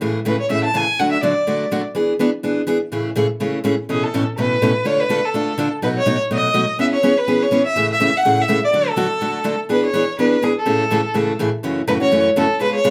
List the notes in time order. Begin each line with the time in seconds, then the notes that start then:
0.01 A2 C#3 E3 A3 C#4 G#4
0.25 A2 C#3 E3 A3 C#4 G#4 B4
0.40 C#5
0.49 A2 C#3 E3 A3 C#4 G#4 E5
0.65 A5
0.74 A2 C#3 E3 A3 C#4 G#4 G#5
0.99 D3 F#3 A3 D4 F#4 F#5
1.12 E5
1.23 D3 F#3 A3 D4 F#4 D5
1.47 D3 F#3 A3 D4 F#4
1.71 D3 F#3 A3 D4 F#4
1.95 E3 B3 D4 G#4
2.19 E3 B3 D4 G#4
2.43 E3 B3 D4 G#4
2.67 E3 B3 D4 G#4
2.92 A2 C#3 E3 A3 C#4 G#4
3.15 A2 C#3 E3 A3 C#4 G#4
3.40 A2 C#3 E3 A3 C#4 G#4
3.64 A2 C#3 E3 A3 C#4 G#4
3.89 A2 B2 E3 A3 C#4 G#4 A4
4.04 A4
4.14 A2 B2 E3 A3 C#4 A4
4.37 A2 B2 E3 A3 C#4 A4 B4
4.62 A2 B2 E3 A3 C#4 A4
4.85 D3 A3 D4 F4 A4 C#5
5.00 B4
5.09 D3 A3 D4 F4 A4
5.25 A4
5.34 D3 A3 D4 F4 A4
5.58 D3 A3 D4 F4 A4
5.82 B2 F#3 A3 D#4 F#4 B4
5.98 C#5
6.06 B2 F#3 A3 D#4 F#4
6.31 B2 F#3 A3 D#4 F#4 D#5
6.54 B2 F#3 A3 D#4 F#4
6.78 E3 B3 C#4 G#4 E5
6.93 C#5
7.03 E3 B3 C#4 G#4
7.18 B4
7.27 E3 B3 C#4 G#4
7.43 C#5
7.51 E3 B3 C#4 G#4
7.66 E5
7.76 A2 C#3 E3 A3 C#4 G#4
7.92 E5
8.00 A2 C#3 E3 A3 C#4 G#4
8.17 F#5
8.25 A2 C#3 E3 A3 C#4 G#4
8.42 E5
8.48 A2 C#3 E3 A3 C#4 G#4
8.65 D5
8.73 D3 F#3 A3 D4 F#4
8.89 A4
8.96 D3 F#3 A3 D4 F#4
9.21 D3 F#3 A3 D4 F#4
9.44 D3 F#3 A3 D4 F#4
9.69 E3 B3 D4 G#4 B4
9.86 C#5
9.93 E3 B3 D4 G#4
10.19 E3 B3 D4 G#4 B4
10.42 E3 B3 D4 G#4
10.58 A4
10.66 A2 C#3 E3 A3 C#4 G#4
10.91 A2 C#3 E3 A3 C#4 G#4
11.14 A2 C#3 E3 A3 C#4 G#4
11.39 A2 C#3 E3 A3 C#4 G#4
11.63 F#2 C#3 E3 A3 C#4 F#4
11.87 F#2 C#3 E3 A3 C#4 F#4 B4
12.00 E3 A3 C#4 F#4 C#5
12.11 F#2 C#3 E3 A3 C#4 F#4
12.36 F#2 C#3 E3 A3 C#4 F#4 A4
12.60 C#3 G#3 B3 F4 G#4 B4
12.75 C#5
12.84 C#3 G#3 B3 F4 G#4